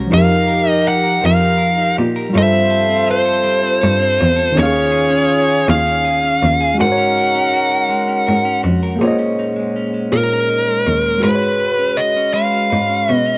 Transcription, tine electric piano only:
Already playing: C#4
0.07 F3 D#4
0.14 G4 A#4
2.30 G3 F4
2.37 A4 C5
4.52 D#3 C#4
4.60 G4 F5
4.66 G#4
6.74 G#3 F#4
6.82 A#4 C5
6.92 C#5
8.96 A#3 G#4
9.02 C5 C#5
9.07 D#5
11.18 G#3 F#4
11.23 G#4 B4
11.28 C5
11.35 C#5

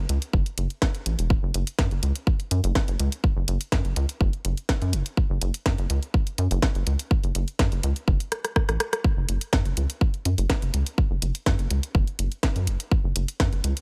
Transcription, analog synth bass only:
0.09 C#2
0.33 F#1
0.58 F#1
1.06 A1
1.19 E1
1.43 F#1
1.54 F#1
1.79 F#2
1.91 F#1
2.03 C#2
2.51 F#2
2.64 F#1
2.88 F#1
3.00 C#2
3.36 F#1
3.48 F#1
3.72 F#2
3.85 F#1
3.96 C#2
4.21 F#1
4.45 F#1
4.82 F#2
4.93 F#1
5.30 F#1
5.42 F#1
5.66 F#2
5.78 F#1
5.90 C#2
6.38 F#2
6.51 F#1
6.75 F#1
6.87 C#2
7.24 F#1
7.35 F#1
7.59 F#2
7.72 F#1
7.83 C#2
8.08 F#1
8.69 A1
9.17 F#1
9.29 F#1
9.53 F#2
9.66 F#1
9.77 C#2
10.25 F#2
10.38 F#1
10.62 F#1
10.74 C#2
11.11 F#1
11.22 F#1
11.46 F#2
11.59 F#1
11.71 C#2
11.95 F#1
12.19 F#1
12.56 F#2
12.67 F#1
13.04 F#1
13.16 F#1
13.40 F#2
13.53 F#1
13.64 C#2

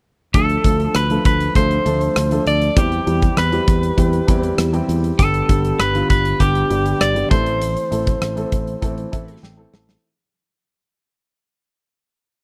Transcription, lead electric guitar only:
0.35 A4
0.96 B4
1.26 B4
1.56 C5
2.47 D5
2.78 G4
3.38 B4
5.19 A4
5.80 B4
6.10 B4
6.40 G4
7.01 D5
7.31 C5

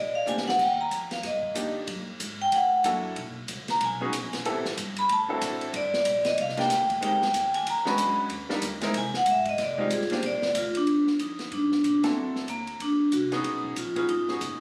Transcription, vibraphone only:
Already playing: D5
0.15 F5
0.29 G#5
0.48 F#5
0.62 G5
0.81 A#5
1.12 F5
1.26 D#5
2.42 G5
2.55 F#5
3.70 A#5
3.84 G#5
4.99 B5
5.12 A5
5.76 D5
6.27 D#5
6.41 F5
6.59 G5
7.04 G5
7.55 G#5
7.70 A#5
7.87 B5
8.98 G#5
9.17 F#5
9.30 E5
9.49 D#5
9.63 D5
9.81 F4
9.94 G#4
10.12 C5
10.26 D5
10.58 F4
10.77 D4
11.20 D#4
11.53 D4
11.86 D4
12.06 C4
12.50 A#3
12.82 D4
13.13 F#4
13.33 D#4
13.78 F4
13.99 F4
14.10 D#4

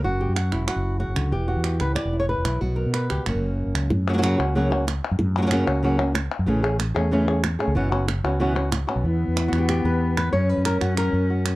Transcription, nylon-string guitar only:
0.03 F#2 F#4
0.21 G4
0.36 F#4
0.52 E4
0.68 F#4
0.99 C#3 F#4
1.16 D3
1.32 E3 G4
1.48 F#4
1.64 G4
1.81 B4
1.95 D5
2.13 E4
2.20 C#5
2.28 E4 B4
2.45 E4
2.61 B2 F#4
2.76 A#4
2.94 B4
3.10 G4
3.26 F#2 A#3 C#4 F#4
3.90 muted nylon-string guitar stroke
4.09 F#3 A#3 C#4 F#4
4.13 F#3 A#3 C#4 F#4
4.18 F#3 A#3 C#4 F#4
4.22 C#3 F#3 A#3 C#4 F#4
4.38 A#3 C#4 F#4
4.55 C#3 F#3 A#3 C#4 F#4
4.70 A#3 C#4 F#4
4.87 muted nylon-string guitar stroke
5.19 muted nylon-string guitar stroke
5.37 F#3 A#3 C#4 F#4
5.42 F#3 A#3 C#4 F#4
5.46 F#3 A#3 C#4 F#4
5.51 C#3 F#3 A#3 C#4 F#4
5.66 A#3 C#4 F#4
5.83 C#3 F#3 A#3 C#4 F#4
5.99 A#3 C#4 F#4
6.14 muted nylon-string guitar stroke
6.46 C#3 E3 A3 C#4 G#4
6.62 A3 C#4 G#4
6.79 muted nylon-string guitar stroke
6.95 A3 C#4 G#4
7.11 C#3 E3 A3 C#4 G#4
7.28 A3 C#4 G#4
7.44 muted nylon-string guitar stroke
7.59 A3 C#4 G#4
7.75 B2 E3 B3 C#4 F#4
7.91 B3 C#4 F#4
8.08 muted nylon-string guitar stroke
8.24 B3 C#4 F#4
8.40 B2 E3 B3 C#4 F#4
8.55 B3 C#4 F#4
8.71 muted nylon-string guitar stroke
8.87 B3 C#4 F#4
9.05 E3
9.36 E4
9.48 F#4
9.58 G4
9.69 G4
9.85 B4
10.17 B4
10.33 F#2 C#5
10.49 B4
10.66 A#4
10.81 F#4
10.98 A#4
11.14 F#4
11.30 F#4
11.46 C#4

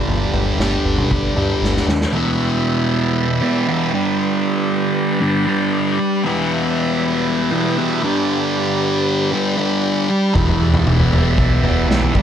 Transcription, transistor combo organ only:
Already playing: G3 D4 B4
2.14 G3 E4 B4
3.95 G3 D4
6.24 G3 E4
8.06 G3 D4
10.37 E4
12.13 D4

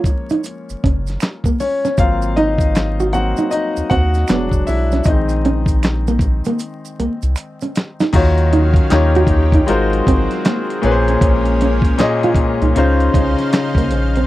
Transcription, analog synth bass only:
0.70 F#1
0.85 F#1
1.99 G#1
3.77 D#2
3.91 D#2
4.30 E1
4.52 F#1
4.68 B1
5.06 A#1
6.99 C2
7.23 C2
8.14 D#2
8.92 D#2
9.27 D#2
9.69 G#1
10.07 G#1
10.84 A#1
11.22 A#1
12.35 C2
12.62 C2
12.77 C#2
13.15 C2
13.76 C2
13.91 A#1

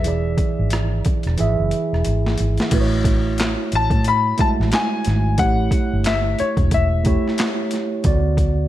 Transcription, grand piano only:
Already playing: E5
3.75 A5
4.08 B5
4.40 A5
4.75 G#5
5.39 F#5
6.07 E5
6.40 C#5
6.74 E5

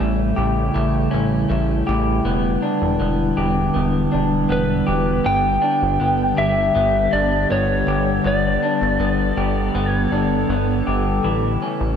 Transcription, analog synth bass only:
0.00 A1
0.37 A1
0.75 A1
1.13 A1
1.50 A1
1.88 A1
2.25 E1
2.81 E1
3.00 E1
3.38 E1
3.76 E1
4.14 E1
4.50 E1
4.88 E1
5.25 G1
5.82 G1
6.01 G1
6.38 G1
6.75 G1
7.13 G1
7.50 G1
7.87 G1
8.24 G1
8.81 G1
8.99 G1
9.37 G1
9.74 G1
10.12 G1
10.49 G1
10.87 G1
11.24 A1
11.81 A1

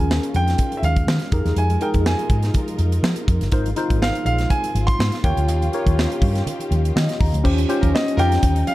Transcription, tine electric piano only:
Already playing: C#4 F4 G#4 A#4
1.32 D#4 G4 G#4 A#4
1.81 D#4 F4 G#4 A#4
3.52 D#4 F4 A#4 C5
3.76 D#4 F4 A#4 C5
5.24 F4 G4 A#4 C#5
5.73 F4 G4 A#4 C#5
6.96 D#5
7.20 A#5
7.44 C#4 F4 G4 C5
7.69 C#4 F4 G4 C5

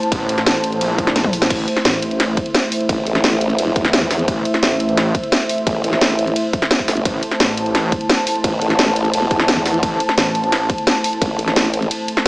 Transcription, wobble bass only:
2.89 A1
3.07 A1
3.59 E1
3.76 E2
5.67 A1
5.84 A1
6.88 G1
8.44 A1
8.62 A1
9.14 E1
9.31 E2
11.22 A1
11.39 A1

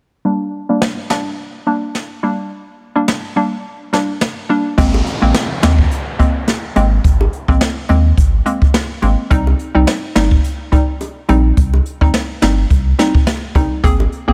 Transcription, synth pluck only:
0.25 G3 A#3 D4
0.69 G3 A#3 D4
1.10 G3 A#3 D4
1.66 G3 A#3 D4
2.23 G3 A#3 D4
2.95 G3 A#3 D4
3.36 G3 A#3 D4
3.93 G3 A#3 D4
4.49 G3 A#3 D4
4.78 G#3 A#3 C4
5.22 G#3 A#3 C4
5.63 G#3 A#3 C4
6.19 G#3 A#3 C4
6.76 G#3 A#3 C4
7.48 G#3 A#3 C4
7.89 G#3 A#3 C4
8.46 G#3 A#3 C4
9.02 G#3 A#3 C4
9.30 G3 C4 D#4
9.75 G3 C4 D#4
10.15 G3 C4 D#4
10.72 G3 C4 D#4
11.29 G3 C4 D#4
12.01 G3 C4 D#4
12.42 G3 C4 D#4
12.99 G3 C4 D#4
13.55 G3 C4 D#4
13.84 A#3 C4 G#4
14.28 A#3 C4 G#4

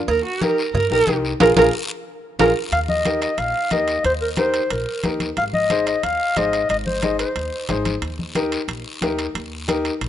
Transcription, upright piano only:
0.42 D#4 G4 A#4
0.91 D#4 G4 A#4
1.08 D#4 G4 A#4
1.40 F4 G#4 A#4
1.57 F4 G#4 A#4
2.39 F4 G#4 A#4
3.05 D#4 G4 A#4
3.72 D#4 G4 A#4
4.38 D#4 G4 A#4
5.04 D#4 G4 A#4
5.70 D#4 G#4 C5
6.36 D#4 G#4 C5
7.02 D#4 G#4 C5
7.69 D#4 G#4 C5
8.35 D#4 G4 A#4
9.02 D#4 G4 A#4
9.68 D#4 G4 A#4

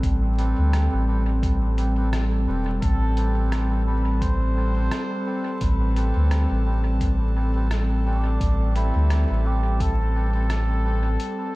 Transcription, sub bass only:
0.03 A1
0.58 D2
0.93 A1
2.48 E1
2.82 A1
5.61 A1
6.16 D2
6.50 A1
8.41 A1
8.95 D2
9.30 A1

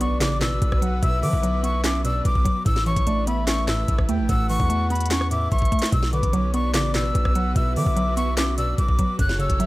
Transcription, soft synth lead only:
0.01 D5
0.82 F#5
1.03 E5
2.05 D5
2.86 C#5
3.07 D5
3.27 E5
4.09 G5
4.29 F#5
5.31 E5
6.13 B4
6.33 C#5
6.54 D5
7.35 F#5
7.56 E5
8.58 D5
9.40 C#5
9.60 E5

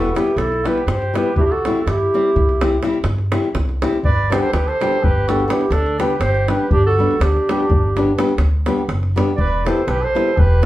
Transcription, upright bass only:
Already playing: E1
0.36 B1
0.87 G2
1.36 C2
1.86 G2
2.36 C2
3.04 G2
3.54 C2
4.03 G1
4.53 D2
5.03 G1
5.70 D2
6.20 G1
6.71 G1
7.20 D2
7.69 G1
8.38 D2
8.88 F#1
9.38 E1
9.87 B1
10.37 E1

